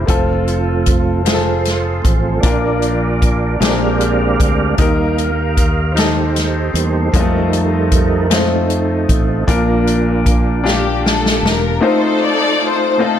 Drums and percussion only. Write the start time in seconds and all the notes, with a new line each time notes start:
0.08 kick, closed hi-hat
0.47 closed hi-hat
0.86 kick, closed hi-hat
1.26 snare, closed hi-hat
1.65 snare, closed hi-hat
2.05 kick, closed hi-hat
2.43 kick, closed hi-hat
2.82 closed hi-hat
3.22 kick, closed hi-hat
3.62 snare, closed hi-hat
4.00 closed hi-hat
4.40 kick, closed hi-hat
4.78 kick, closed hi-hat
5.18 closed hi-hat
5.57 kick, closed hi-hat
5.97 snare, closed hi-hat
6.36 snare, closed hi-hat
6.75 closed hi-hat
7.14 kick, closed hi-hat
7.53 closed hi-hat
7.92 kick, closed hi-hat
8.31 snare, closed hi-hat
8.70 closed hi-hat
9.09 kick, closed hi-hat
9.48 kick, closed hi-hat
9.87 closed hi-hat
10.26 kick, closed hi-hat
10.67 snare
11.06 snare
11.26 snare
11.46 snare